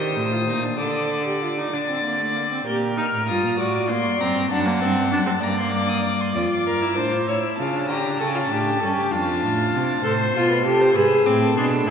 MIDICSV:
0, 0, Header, 1, 5, 480
1, 0, Start_track
1, 0, Key_signature, -2, "minor"
1, 0, Tempo, 623053
1, 612, Time_signature, 6, 3, 24, 8
1, 2530, Tempo, 613497
1, 4934, Key_signature, -1, "minor"
1, 9273, End_track
2, 0, Start_track
2, 0, Title_t, "Violin"
2, 0, Program_c, 0, 40
2, 0, Note_on_c, 0, 87, 85
2, 598, Note_off_c, 0, 87, 0
2, 608, Note_on_c, 0, 86, 83
2, 1335, Note_on_c, 0, 93, 81
2, 1346, Note_off_c, 0, 86, 0
2, 2051, Note_off_c, 0, 93, 0
2, 2056, Note_on_c, 0, 91, 68
2, 2117, Note_off_c, 0, 91, 0
2, 2293, Note_on_c, 0, 89, 73
2, 2524, Note_off_c, 0, 89, 0
2, 2528, Note_on_c, 0, 87, 68
2, 2767, Note_on_c, 0, 86, 69
2, 2779, Note_off_c, 0, 87, 0
2, 3004, Note_off_c, 0, 86, 0
2, 3008, Note_on_c, 0, 84, 86
2, 3250, Note_on_c, 0, 82, 90
2, 3262, Note_off_c, 0, 84, 0
2, 3488, Note_off_c, 0, 82, 0
2, 3493, Note_on_c, 0, 81, 89
2, 4209, Note_on_c, 0, 82, 78
2, 4220, Note_off_c, 0, 81, 0
2, 4329, Note_off_c, 0, 82, 0
2, 4333, Note_on_c, 0, 84, 78
2, 4443, Note_off_c, 0, 84, 0
2, 4448, Note_on_c, 0, 86, 80
2, 4569, Note_on_c, 0, 87, 85
2, 4581, Note_off_c, 0, 86, 0
2, 4686, Note_off_c, 0, 87, 0
2, 4691, Note_on_c, 0, 86, 77
2, 4817, Note_on_c, 0, 84, 69
2, 4829, Note_off_c, 0, 86, 0
2, 4932, Note_off_c, 0, 84, 0
2, 4936, Note_on_c, 0, 86, 86
2, 5628, Note_off_c, 0, 86, 0
2, 5659, Note_on_c, 0, 88, 73
2, 5888, Note_off_c, 0, 88, 0
2, 5892, Note_on_c, 0, 81, 80
2, 6130, Note_off_c, 0, 81, 0
2, 6138, Note_on_c, 0, 82, 79
2, 6374, Note_on_c, 0, 81, 83
2, 6386, Note_off_c, 0, 82, 0
2, 7093, Note_off_c, 0, 81, 0
2, 7098, Note_on_c, 0, 81, 93
2, 7813, Note_on_c, 0, 84, 92
2, 7825, Note_off_c, 0, 81, 0
2, 8532, Note_on_c, 0, 88, 85
2, 8544, Note_off_c, 0, 84, 0
2, 8772, Note_on_c, 0, 86, 78
2, 8784, Note_off_c, 0, 88, 0
2, 9005, Note_off_c, 0, 86, 0
2, 9009, Note_on_c, 0, 84, 93
2, 9072, Note_off_c, 0, 84, 0
2, 9273, End_track
3, 0, Start_track
3, 0, Title_t, "Violin"
3, 0, Program_c, 1, 40
3, 0, Note_on_c, 1, 72, 83
3, 605, Note_off_c, 1, 72, 0
3, 610, Note_on_c, 1, 74, 77
3, 1319, Note_off_c, 1, 74, 0
3, 1334, Note_on_c, 1, 74, 78
3, 2040, Note_off_c, 1, 74, 0
3, 2055, Note_on_c, 1, 70, 80
3, 2740, Note_off_c, 1, 70, 0
3, 2769, Note_on_c, 1, 74, 86
3, 3476, Note_off_c, 1, 74, 0
3, 3498, Note_on_c, 1, 78, 99
3, 4198, Note_off_c, 1, 78, 0
3, 4208, Note_on_c, 1, 74, 101
3, 4918, Note_off_c, 1, 74, 0
3, 4928, Note_on_c, 1, 74, 86
3, 4991, Note_off_c, 1, 74, 0
3, 5173, Note_on_c, 1, 70, 98
3, 5409, Note_off_c, 1, 70, 0
3, 5413, Note_on_c, 1, 72, 101
3, 5651, Note_off_c, 1, 72, 0
3, 5658, Note_on_c, 1, 73, 94
3, 5721, Note_off_c, 1, 73, 0
3, 5891, Note_on_c, 1, 65, 75
3, 6124, Note_off_c, 1, 65, 0
3, 6128, Note_on_c, 1, 67, 90
3, 6368, Note_off_c, 1, 67, 0
3, 6372, Note_on_c, 1, 69, 89
3, 6421, Note_off_c, 1, 69, 0
3, 6490, Note_on_c, 1, 65, 88
3, 6539, Note_off_c, 1, 65, 0
3, 6613, Note_on_c, 1, 67, 91
3, 6845, Note_on_c, 1, 69, 87
3, 6857, Note_off_c, 1, 67, 0
3, 6960, Note_off_c, 1, 69, 0
3, 6965, Note_on_c, 1, 67, 94
3, 7089, Note_on_c, 1, 65, 95
3, 7100, Note_off_c, 1, 67, 0
3, 7810, Note_off_c, 1, 65, 0
3, 7815, Note_on_c, 1, 72, 88
3, 8167, Note_off_c, 1, 72, 0
3, 8172, Note_on_c, 1, 71, 71
3, 8291, Note_off_c, 1, 71, 0
3, 8297, Note_on_c, 1, 69, 85
3, 8414, Note_on_c, 1, 72, 91
3, 8426, Note_off_c, 1, 69, 0
3, 8530, Note_off_c, 1, 72, 0
3, 8535, Note_on_c, 1, 71, 88
3, 8883, Note_off_c, 1, 71, 0
3, 8888, Note_on_c, 1, 69, 79
3, 9012, Note_on_c, 1, 68, 84
3, 9024, Note_off_c, 1, 69, 0
3, 9132, Note_on_c, 1, 69, 83
3, 9144, Note_off_c, 1, 68, 0
3, 9242, Note_off_c, 1, 69, 0
3, 9247, Note_on_c, 1, 68, 90
3, 9273, Note_off_c, 1, 68, 0
3, 9273, End_track
4, 0, Start_track
4, 0, Title_t, "Viola"
4, 0, Program_c, 2, 41
4, 0, Note_on_c, 2, 67, 81
4, 248, Note_on_c, 2, 65, 66
4, 259, Note_off_c, 2, 67, 0
4, 361, Note_off_c, 2, 65, 0
4, 366, Note_on_c, 2, 63, 69
4, 485, Note_on_c, 2, 62, 71
4, 496, Note_off_c, 2, 63, 0
4, 604, Note_off_c, 2, 62, 0
4, 608, Note_on_c, 2, 69, 77
4, 965, Note_off_c, 2, 69, 0
4, 974, Note_on_c, 2, 67, 64
4, 1086, Note_off_c, 2, 67, 0
4, 1091, Note_on_c, 2, 65, 69
4, 1139, Note_off_c, 2, 65, 0
4, 1213, Note_on_c, 2, 63, 63
4, 1331, Note_on_c, 2, 62, 63
4, 1343, Note_off_c, 2, 63, 0
4, 1448, Note_off_c, 2, 62, 0
4, 1453, Note_on_c, 2, 60, 68
4, 1567, Note_off_c, 2, 60, 0
4, 1572, Note_on_c, 2, 58, 67
4, 1691, Note_on_c, 2, 57, 65
4, 1702, Note_off_c, 2, 58, 0
4, 1808, Note_off_c, 2, 57, 0
4, 1812, Note_on_c, 2, 58, 66
4, 1861, Note_off_c, 2, 58, 0
4, 1931, Note_on_c, 2, 60, 64
4, 2044, Note_off_c, 2, 60, 0
4, 2049, Note_on_c, 2, 67, 93
4, 2273, Note_off_c, 2, 67, 0
4, 2290, Note_on_c, 2, 63, 83
4, 2352, Note_off_c, 2, 63, 0
4, 2527, Note_on_c, 2, 65, 88
4, 2761, Note_off_c, 2, 65, 0
4, 2765, Note_on_c, 2, 66, 87
4, 3008, Note_on_c, 2, 58, 96
4, 3019, Note_off_c, 2, 66, 0
4, 3242, Note_off_c, 2, 58, 0
4, 3247, Note_on_c, 2, 60, 91
4, 3485, Note_off_c, 2, 60, 0
4, 3489, Note_on_c, 2, 62, 105
4, 3604, Note_on_c, 2, 58, 96
4, 3616, Note_off_c, 2, 62, 0
4, 3720, Note_on_c, 2, 60, 109
4, 3732, Note_off_c, 2, 58, 0
4, 3959, Note_off_c, 2, 60, 0
4, 3963, Note_on_c, 2, 62, 100
4, 4012, Note_off_c, 2, 62, 0
4, 4077, Note_on_c, 2, 60, 91
4, 4128, Note_off_c, 2, 60, 0
4, 4202, Note_on_c, 2, 58, 99
4, 4915, Note_off_c, 2, 58, 0
4, 4924, Note_on_c, 2, 65, 81
4, 5288, Note_on_c, 2, 64, 78
4, 5300, Note_off_c, 2, 65, 0
4, 5409, Note_on_c, 2, 62, 80
4, 5421, Note_off_c, 2, 64, 0
4, 5531, Note_on_c, 2, 65, 74
4, 5543, Note_off_c, 2, 62, 0
4, 5647, Note_off_c, 2, 65, 0
4, 5652, Note_on_c, 2, 64, 77
4, 6007, Note_off_c, 2, 64, 0
4, 6011, Note_on_c, 2, 62, 70
4, 6133, Note_on_c, 2, 61, 63
4, 6144, Note_off_c, 2, 62, 0
4, 6249, Note_off_c, 2, 61, 0
4, 6254, Note_on_c, 2, 62, 69
4, 6376, Note_on_c, 2, 61, 82
4, 6388, Note_off_c, 2, 62, 0
4, 6618, Note_on_c, 2, 62, 78
4, 6630, Note_off_c, 2, 61, 0
4, 6855, Note_off_c, 2, 62, 0
4, 6859, Note_on_c, 2, 61, 83
4, 7091, Note_off_c, 2, 61, 0
4, 7096, Note_on_c, 2, 62, 79
4, 7802, Note_off_c, 2, 62, 0
4, 7813, Note_on_c, 2, 69, 111
4, 7875, Note_off_c, 2, 69, 0
4, 8057, Note_on_c, 2, 65, 102
4, 8287, Note_off_c, 2, 65, 0
4, 8292, Note_on_c, 2, 67, 110
4, 8524, Note_off_c, 2, 67, 0
4, 8529, Note_on_c, 2, 68, 104
4, 8769, Note_on_c, 2, 60, 108
4, 8781, Note_off_c, 2, 68, 0
4, 9005, Note_off_c, 2, 60, 0
4, 9010, Note_on_c, 2, 62, 95
4, 9246, Note_on_c, 2, 64, 110
4, 9258, Note_off_c, 2, 62, 0
4, 9273, Note_off_c, 2, 64, 0
4, 9273, End_track
5, 0, Start_track
5, 0, Title_t, "Cello"
5, 0, Program_c, 3, 42
5, 0, Note_on_c, 3, 51, 85
5, 129, Note_on_c, 3, 45, 83
5, 140, Note_off_c, 3, 51, 0
5, 366, Note_on_c, 3, 46, 77
5, 377, Note_off_c, 3, 45, 0
5, 609, Note_off_c, 3, 46, 0
5, 614, Note_on_c, 3, 50, 86
5, 1321, Note_off_c, 3, 50, 0
5, 1334, Note_on_c, 3, 50, 67
5, 2040, Note_off_c, 3, 50, 0
5, 2055, Note_on_c, 3, 46, 76
5, 2387, Note_off_c, 3, 46, 0
5, 2414, Note_on_c, 3, 45, 66
5, 2532, Note_on_c, 3, 43, 67
5, 2544, Note_off_c, 3, 45, 0
5, 2653, Note_on_c, 3, 46, 70
5, 2664, Note_off_c, 3, 43, 0
5, 2767, Note_off_c, 3, 46, 0
5, 2772, Note_on_c, 3, 45, 64
5, 3129, Note_on_c, 3, 43, 61
5, 3141, Note_off_c, 3, 45, 0
5, 3248, Note_off_c, 3, 43, 0
5, 3253, Note_on_c, 3, 42, 80
5, 3366, Note_off_c, 3, 42, 0
5, 3371, Note_on_c, 3, 43, 71
5, 3489, Note_off_c, 3, 43, 0
5, 3494, Note_on_c, 3, 42, 98
5, 3731, Note_on_c, 3, 43, 87
5, 3742, Note_off_c, 3, 42, 0
5, 3974, Note_on_c, 3, 42, 77
5, 3986, Note_off_c, 3, 43, 0
5, 4208, Note_off_c, 3, 42, 0
5, 4213, Note_on_c, 3, 43, 76
5, 4921, Note_off_c, 3, 43, 0
5, 4933, Note_on_c, 3, 41, 80
5, 4995, Note_off_c, 3, 41, 0
5, 5173, Note_on_c, 3, 43, 64
5, 5414, Note_on_c, 3, 45, 69
5, 5426, Note_off_c, 3, 43, 0
5, 5652, Note_off_c, 3, 45, 0
5, 5657, Note_on_c, 3, 45, 71
5, 5720, Note_off_c, 3, 45, 0
5, 5895, Note_on_c, 3, 49, 83
5, 6133, Note_on_c, 3, 50, 76
5, 6145, Note_off_c, 3, 49, 0
5, 6369, Note_off_c, 3, 50, 0
5, 6373, Note_on_c, 3, 49, 86
5, 6611, Note_off_c, 3, 49, 0
5, 6614, Note_on_c, 3, 45, 74
5, 6852, Note_off_c, 3, 45, 0
5, 6858, Note_on_c, 3, 43, 70
5, 6921, Note_off_c, 3, 43, 0
5, 7096, Note_on_c, 3, 41, 77
5, 7338, Note_on_c, 3, 45, 87
5, 7350, Note_off_c, 3, 41, 0
5, 7576, Note_off_c, 3, 45, 0
5, 7580, Note_on_c, 3, 48, 77
5, 7814, Note_off_c, 3, 48, 0
5, 7818, Note_on_c, 3, 45, 85
5, 8052, Note_off_c, 3, 45, 0
5, 8056, Note_on_c, 3, 47, 75
5, 8296, Note_on_c, 3, 48, 81
5, 8308, Note_off_c, 3, 47, 0
5, 8531, Note_off_c, 3, 48, 0
5, 8536, Note_on_c, 3, 44, 75
5, 8599, Note_off_c, 3, 44, 0
5, 8773, Note_on_c, 3, 45, 91
5, 9007, Note_off_c, 3, 45, 0
5, 9014, Note_on_c, 3, 47, 86
5, 9246, Note_off_c, 3, 47, 0
5, 9273, End_track
0, 0, End_of_file